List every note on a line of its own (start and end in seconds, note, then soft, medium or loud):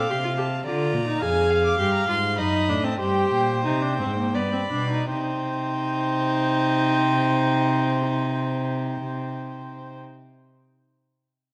0.00 0.64 F5 medium
0.00 0.12 D6 medium
0.10 0.65 C3 medium
0.10 0.16 G4 medium
0.10 0.37 C6 medium
0.24 0.30 F4 medium
0.38 0.46 G4 medium
0.38 0.65 A5 medium
0.65 0.95 D3 medium
0.65 1.07 F4 medium
0.65 1.21 D5 medium
0.65 1.24 A#5 medium
0.94 1.22 A#2 medium
1.08 1.23 D#4 medium
1.21 1.78 F2 medium
1.21 1.78 G#4 medium
1.21 2.40 F5 loud
1.21 1.52 G#5 loud
1.50 1.64 F5 medium
1.65 1.79 D6 medium
1.79 2.08 G2 medium
1.79 2.07 G4 medium
1.79 1.93 C6 medium
1.94 2.08 A#5 medium
2.08 2.40 G#2 medium
2.08 2.16 F4 medium
2.08 2.38 C6 loud
2.38 2.70 F#2 medium
2.38 2.70 D#4 medium
2.38 2.99 D#5 medium
2.38 2.86 B5 medium
2.69 2.99 A2 medium
2.69 2.85 D4 medium
2.84 2.99 C4 medium
2.84 3.00 A5 medium
2.99 3.31 G2 medium
2.99 3.63 G4 loud
2.99 4.36 C5 loud
2.99 3.64 G5 medium
3.32 3.67 A#2 medium
3.65 4.01 C3 medium
3.65 3.83 D#4 medium
3.65 4.36 G5 medium
3.82 3.98 D4 medium
3.99 4.36 G#2 medium
3.99 4.16 C4 medium
4.17 4.36 A#3 medium
4.35 4.71 G2 medium
4.35 4.52 B3 medium
4.35 5.09 D5 medium
4.35 5.09 B5 medium
4.53 4.60 C4 medium
4.71 5.09 B2 medium
4.71 4.90 D4 medium
4.90 5.09 D#4 medium
5.09 10.00 C3 medium
5.09 9.99 D#4 medium
5.09 9.99 C5 medium
5.09 9.99 G5 medium